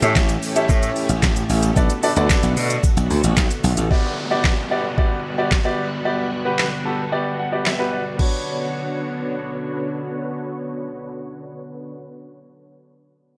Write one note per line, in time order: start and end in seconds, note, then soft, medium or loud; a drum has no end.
0.00 0.13 A2 medium
0.00 1.74 E3 medium
0.00 3.87 A3 medium
0.00 1.74 C#4 medium
0.00 0.30 C#4 loud
0.00 0.30 E4 medium
0.00 1.74 G4 medium
0.00 0.30 G4 medium
0.00 0.30 A4 medium
0.00 0.30 E5 loud
0.00 closed hi-hat medium
0.00 shaker medium
0.16 0.36 A1 loud
0.16 kick loud
0.16 snare loud
0.16 clap loud
0.16 shaker medium
0.29 closed hi-hat soft
0.29 shaker medium
0.42 open hi-hat medium
0.42 shaker medium
0.56 1.12 C#4 medium
0.56 1.12 E4 medium
0.56 1.12 G4 medium
0.56 1.12 A4 medium
0.56 1.12 E5 loud
0.56 closed hi-hat medium
0.56 shaker soft
0.56 shaker medium
0.69 0.90 A2 loud
0.69 kick loud
0.69 shaker medium
0.83 closed hi-hat medium
0.83 shaker medium
0.96 open hi-hat medium
0.96 shaker soft
1.09 1.20 A1 medium
1.09 closed hi-hat medium
1.09 shaker medium
1.23 1.43 A1 loud
1.23 kick loud
1.23 snare medium
1.23 clap loud
1.23 shaker medium
1.36 closed hi-hat medium
1.36 shaker medium
1.49 1.70 A1 loud
1.49 open hi-hat medium
1.49 shaker medium
1.63 closed hi-hat medium
1.63 shaker medium
1.76 1.87 B1 loud
1.76 3.88 D3 medium
1.76 1.90 B3 medium
1.76 3.88 B3 medium
1.76 1.90 D4 medium
1.76 3.88 F#4 medium
1.76 1.90 F#4 medium
1.76 1.90 A4 medium
1.76 1.91 D5 loud
1.76 kick loud
1.76 shaker medium
1.89 closed hi-hat medium
1.89 shaker medium
2.03 2.10 B3 medium
2.03 2.10 D4 medium
2.03 2.10 F#4 medium
2.03 2.10 A4 medium
2.03 2.10 D5 loud
2.03 open hi-hat medium
2.03 shaker medium
2.16 2.27 D2 medium
2.16 2.73 B3 loud
2.16 2.73 D4 medium
2.16 2.73 F#4 medium
2.16 2.73 A4 medium
2.16 2.73 D5 loud
2.16 closed hi-hat medium
2.16 shaker medium
2.30 kick loud
2.30 snare medium
2.30 clap loud
2.30 shaker medium
2.43 2.54 B1 loud
2.43 closed hi-hat medium
2.43 shaker medium
2.56 2.77 B2 medium
2.56 open hi-hat medium
2.56 shaker medium
2.70 closed hi-hat medium
2.70 shaker soft
2.70 shaker medium
2.83 kick loud
2.83 shaker medium
2.97 3.07 B1 medium
2.97 closed hi-hat medium
2.97 shaker medium
3.10 3.21 D2 medium
3.10 open hi-hat medium
3.10 shaker soft
3.24 3.34 A1 medium
3.24 closed hi-hat medium
3.24 shaker soft
3.24 shaker medium
3.37 3.48 B1 loud
3.37 kick loud
3.37 snare medium
3.37 clap loud
3.37 shaker medium
3.50 closed hi-hat medium
3.50 shaker medium
3.64 3.74 B1 loud
3.64 open hi-hat medium
3.64 shaker medium
3.77 3.88 A1 medium
3.77 closed hi-hat medium
3.77 shaker medium
3.91 8.15 D3 medium
3.91 8.15 G3 medium
3.91 4.12 B3 medium
3.91 8.15 B3 medium
3.91 8.15 F#4 medium
3.91 4.12 F#4 medium
3.91 4.12 G4 medium
3.91 4.12 D5 medium
3.91 kick loud
3.91 downlifter medium
4.31 4.52 B3 medium
4.31 4.52 F#4 medium
4.31 4.52 G4 medium
4.31 4.52 D5 medium
4.44 kick loud
4.44 snare medium
4.44 clap loud
4.71 4.85 B3 medium
4.71 4.85 F#4 medium
4.71 4.85 G4 medium
4.71 4.85 D5 medium
4.98 5.19 B3 medium
4.98 5.19 F#4 medium
4.98 5.19 G4 medium
4.98 5.19 D5 medium
4.98 kick loud
5.38 5.52 B3 medium
5.38 5.52 F#4 medium
5.38 5.52 G4 medium
5.38 5.52 D5 medium
5.51 kick loud
5.51 snare medium
5.51 clap loud
5.65 5.86 B3 medium
5.65 5.86 F#4 medium
5.65 5.86 G4 medium
5.65 5.86 D5 medium
6.05 6.26 B3 medium
6.05 6.26 F#4 medium
6.05 6.26 G4 medium
6.05 6.26 D5 medium
6.45 6.66 B3 medium
6.45 6.66 F#4 medium
6.45 6.66 G4 medium
6.45 6.66 B4 medium
6.59 snare medium
6.59 clap loud
6.85 6.99 B3 medium
6.85 6.99 F#4 medium
6.85 6.99 G4 medium
6.85 7.00 A4 medium
6.85 7.10 A5 medium
7.12 7.33 B3 medium
7.12 7.33 F#4 medium
7.12 7.33 G4 medium
7.12 7.33 D5 medium
7.12 7.37 G5 medium
7.39 7.64 F#5 medium
7.52 7.66 B3 medium
7.52 7.66 F#4 medium
7.52 7.66 G4 medium
7.52 7.66 D5 medium
7.66 7.91 E5 medium
7.66 snare medium
7.66 clap loud
7.79 8.00 B3 medium
7.79 8.00 F#4 medium
7.79 8.00 G4 medium
7.79 8.00 B4 medium
7.93 8.17 D5 medium
8.17 11.97 D3 medium
8.17 11.95 B3 medium
8.17 11.97 B3 medium
8.17 11.97 D4 medium
8.17 11.97 F#4 medium
8.17 11.98 F#4 medium
8.17 11.97 C#5 medium
8.17 kick loud
8.17 crash medium
8.21 11.99 C#5 medium